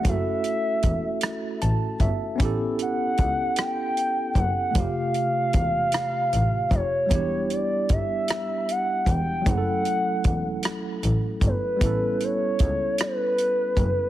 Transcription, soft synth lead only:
\new Staff \with { instrumentName = "Soft synth lead" } { \time 6/8 \key fis \phrygian \tempo 4. = 51 e''2 r4 | r8 fis''4 g''4 fis''8 | f''2~ f''8 cis''8~ | cis''8 d''8 e''4 fis''8 g''8 |
fis''2 r8 b'8~ | b'8 cis''4 b'4. | }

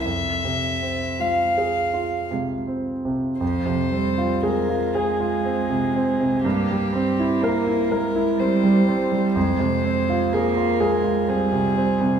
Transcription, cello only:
\new Staff \with { instrumentName = "Cello" } { \clef bass \time 3/4 \key f \minor \tempo 4 = 61 r4 aes4 aes4 | f8 g8 aes2 | bes8 c'8 bes8 aes8 g8 g8 | aes4 bes8 aes8 g4 | }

